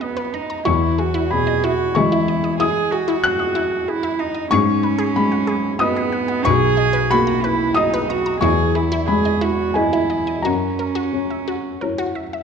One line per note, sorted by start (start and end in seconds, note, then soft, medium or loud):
0.00 0.35 B3 medium
0.00 0.63 F#4 medium
0.00 0.64 A#4 soft
0.00 0.64 D#5 medium
0.00 0.11 D#5 medium
0.00 0.70 D#6 medium
0.00 0.30 F#6 loud
0.17 0.27 B4 medium
0.33 0.66 D#4 medium
0.33 0.44 A#5 medium
0.50 0.60 A#5 medium
0.65 2.56 E2 medium
0.65 0.75 E4 loud
0.65 1.00 E4 medium
0.65 1.26 C#6 loud
0.98 1.32 F#4 medium
0.98 1.08 G#4 medium
1.14 1.24 E4 loud
1.31 2.35 B2 medium
1.31 1.65 G#4 medium
1.31 1.92 B5 medium
1.47 1.57 D#5 medium
1.64 1.73 E4 loud
1.64 1.97 F#4 medium
1.95 4.48 E3 medium
1.95 4.48 G#3 medium
1.95 2.59 E4 medium
1.95 2.06 G#4 medium
1.95 4.48 D#5 medium
1.95 2.56 C#6 loud
2.12 2.22 E4 loud
2.28 2.38 D#5 medium
2.44 2.54 D#5 medium
2.59 2.70 E4 loud
2.59 2.93 G#4 loud
2.59 3.20 D#6 loud
2.91 3.90 F#4 medium
2.91 3.02 G#4 medium
3.08 3.18 E4 loud
3.24 4.16 F#6 loud
3.39 3.49 D#5 medium
3.55 3.65 E4 loud
3.88 4.21 E4 loud
3.88 3.98 G#4 medium
4.03 4.13 E4 loud
4.19 4.51 D#4 medium
4.19 4.29 D#5 medium
4.35 4.45 D#5 medium
4.51 6.42 G#2 medium
4.51 5.78 C#4 loud
4.51 4.62 G#4 loud
4.51 5.12 C#6 loud
4.83 4.93 B4 medium
4.98 5.09 G#4 loud
5.16 6.20 G#3 medium
5.16 5.77 B5 loud
5.32 5.42 F#5 medium
5.47 5.57 G#4 loud
5.79 6.47 B3 loud
5.79 6.42 F#4 medium
5.79 5.90 B4 medium
5.79 6.42 D#5 medium
5.79 6.41 D#6 loud
5.97 6.06 G#4 medium
6.12 6.22 F#5 medium
6.28 6.38 F#5 medium
6.45 8.39 B1 medium
6.45 7.12 G#4 loud
6.45 6.55 B4 loud
6.45 7.06 C#6 loud
6.77 6.87 D#5 medium
6.93 7.03 B4 loud
7.10 8.17 A#3 medium
7.10 7.44 F#4 loud
7.10 7.73 B5 loud
7.27 7.37 A#5 medium
7.42 7.77 E4 loud
7.42 7.54 B4 loud
7.74 8.10 D#4 medium
7.74 8.38 F#4 medium
7.74 7.87 D#5 medium
7.74 8.39 D#5 medium
7.74 8.37 D#6 loud
7.94 8.03 B4 loud
8.09 8.40 F#4 medium
8.09 8.20 A#5 medium
8.26 8.36 A#5 medium
8.41 10.39 E2 medium
8.41 8.52 E4 loud
8.41 8.76 G#4 loud
8.41 9.03 C#6 loud
8.75 9.08 E4 medium
8.75 8.85 G#4 medium
8.92 9.02 E4 loud
9.07 10.16 G#3 medium
9.07 9.43 G#4 medium
9.07 9.71 B5 medium
9.25 9.35 D#5 medium
9.41 9.51 E4 loud
9.41 9.76 F#4 medium
9.74 10.47 E4 medium
9.74 10.40 E4 medium
9.74 9.86 G#4 medium
9.74 10.40 D#5 medium
9.74 10.39 G#5 medium
9.93 10.03 E4 loud
10.10 10.20 D#5 medium
10.27 10.37 D#5 medium
10.42 12.43 F#2 medium
10.42 12.16 C#4 medium
10.42 10.55 F#4 medium
10.42 11.76 A#5 medium
10.79 10.89 A#4 medium
10.95 11.05 F#4 loud
11.13 12.22 C#4 medium
11.30 11.40 E5 medium
11.48 11.58 F#4 medium
11.81 12.43 E4 medium
11.81 11.91 A#4 medium
11.81 12.43 C#5 medium
11.98 12.08 F#4 loud
12.15 12.25 E5 medium
12.33 12.43 E5 medium